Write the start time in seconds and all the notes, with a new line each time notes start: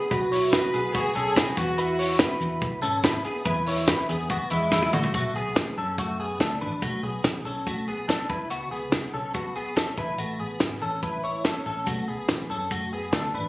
Already playing: B3 G#4
0.11 B1 F#4 B4, kick, hi-hat pedal, open hi-hat
0.32 E4 C#5, hi-hat pedal, open hi-hat
0.52 F#4 B4, kick, snare, hi-hat pedal, open hi-hat
0.74 B1 B3 G#4, hi-hat pedal, open hi-hat
0.93 B3 F#4 G#4, kick, hi-hat pedal, open hi-hat
1.15 B1 C#4 A4, hi-hat pedal, open hi-hat
1.36 F#4 B4, kick, snare, hi-hat pedal, open hi-hat
1.56 E2 B3 F#4, kick, hi-hat pedal, open hi-hat
1.78 E4 B4, hi-hat pedal, open hi-hat
1.99 E4 C#5, hi-hat pedal, open hi-hat
2.19 E4 B4, kick, snare, hi-hat pedal, open hi-hat
2.41 E2, hi-hat pedal, open hi-hat
2.62 B1, kick, hi-hat pedal, open hi-hat
2.82 G#1 C#4 A4, hi-hat pedal, open hi-hat
3.04 E4 B4, kick, snare, hi-hat pedal, open hi-hat
3.24 B3 G#4, hi-hat pedal, open hi-hat
3.45 E2 E4 B4, kick, hi-hat pedal, open hi-hat
3.66 E4 C#5, hi-hat pedal, open hi-hat
3.87 E4 B4, kick, snare, hi-hat pedal, open hi-hat
4.09 E2 B3 G#4, hi-hat pedal, open hi-hat
4.29 B3 F#4, kick, hi-hat pedal, open hi-hat
4.50 E2 G#3 E4, hi-hat pedal, open hi-hat
4.71 G#3 E4, kick, snare
4.82 high tom
4.93 A1 A3 F#4, mid tom
5.03 floor tom
5.14 B1 A3 F#4, kick, closed hi-hat
5.35 B1 B3 G#4
5.56 A1, kick, snare, closed hi-hat
5.77 F#2 C#4 A4
5.98 A3 F#4, kick, closed hi-hat
6.20 B3 G#4
6.40 D2 D4 A4, kick, snare, closed hi-hat
6.61 A1 D4 B4
6.82 B1 A3 F#4, kick, closed hi-hat
7.03 B1 B3 G#4
7.24 A1, kick, snare, closed hi-hat
7.45 B1 C#4 A4
7.67 A3 F#4, kick, closed hi-hat
7.88 B3 G#4
8.08 D4 A4, kick, snare, closed hi-hat
8.29 C#2 E4 B4, kick
8.50 B3 F#4, closed hi-hat
8.71 C#2 B3 G#4
8.92 C#2, kick, snare, closed hi-hat
9.13 B1 C#4 A4
9.34 B3 F#4, kick, closed hi-hat
9.56 B3 G#4
9.76 C#2 C#4 A4, kick, snare, closed hi-hat
9.98 A1 E4 B4, kick
10.18 A1 A3 F#4, closed hi-hat
10.40 A1 B3 G#4
10.60 G#1, kick, snare, closed hi-hat
10.82 A1 C#4 A4
11.02 E4 B4, kick, closed hi-hat
11.24 E4 C#5
11.44 C#4 A4, kick, snare, closed hi-hat
11.66 A1 C#4 A4
11.86 B1 A3 F#4, kick, closed hi-hat
12.08 B1 B3 G#4
12.28 A1, kick, snare, closed hi-hat
12.50 F#2 C#4 A4
12.71 A3 F#4, kick, closed hi-hat
12.93 B3 G#4
13.12 D2 D4 A4, kick, snare, closed hi-hat
13.33 A1 D4 B4